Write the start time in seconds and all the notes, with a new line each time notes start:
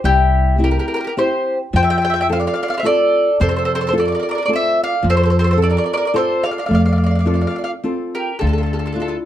0.04 C2 G3 E4 G4
0.58 C4 E4 G4
0.64 G4 A#4
0.71 G4 A#4
0.79 G4 A#4
0.88 G4 A#4
0.94 G4 A#4
1.01 G4 A#4
1.07 G4 A#4
1.17 C4 E4 G4 C5
1.73 F2 F3 C5 G5
1.83 E5 G5
1.90 E5 G5
1.98 G5
2.02 E5 G5
2.10 E5 G5
2.16 E5
2.21 E5 G5
2.29 C4 F4 A4 C5 F5
2.40 D5 F5
2.47 D5 F5
2.54 D5 F5
2.63 D5 F5
2.68 D5 F5
2.74 C5 D5 F5
2.80 C4 E5
2.84 F4 A4 D5
3.40 F2 C3 A4 C5
3.49 A4 C5
3.56 A4 C5
3.65 A4 C5
3.75 A4 C5
3.81 A4 C5
3.87 A4 C5
3.93 C4 F4 A4
3.98 A4 D5
4.05 A#4 D5
4.12 A#4 D5
4.19 A#4 D5
4.29 A#4 D5
4.35 A#4 D5
4.42 A#4 D5
4.48 C4 F4 A4
4.53 C5 E5
4.84 D5 F5
5.03 F2 F3
5.10 A4 C5
5.17 A4 C5
5.23 A4 C5
5.30 A4 C5
5.39 A4 C5
5.44 A4 C5
5.51 A4 C5
5.57 C4 F4 A4
5.62 A4 D5
5.70 A#4 D5
5.77 A#4 D5
5.84 A#4 D5
5.93 A#4 D5
5.97 A#4 D5
6.05 A#4 D5
6.14 C4 F4 A4 C5
6.18 A4
6.44 D5 F5
6.51 D5 F5
6.58 D5 F5
6.66 A3 D5 F5
6.71 F2 D5 F5
6.80 D5
6.86 D5 F5
6.92 D5 F5
6.98 F5
7.04 D5 F5
7.11 D5
7.15 F5
7.21 D5
7.26 C4 F4 A4 D5 F5
7.34 D5 F5
7.41 D5 F5
7.47 D5 F5
7.56 D5 F5
7.64 D5 F5
7.84 C4 F4 A4
8.15 G4 A#4
8.39 D2 D3 F4 A4
8.47 F4 A4
8.53 A4
8.58 F4
8.63 F4 A4
8.73 F4 A4
8.79 F4 A4
8.86 F4 A4
8.92 D4 E4 F4 A4
9.00 F4 A4
9.08 F4 A4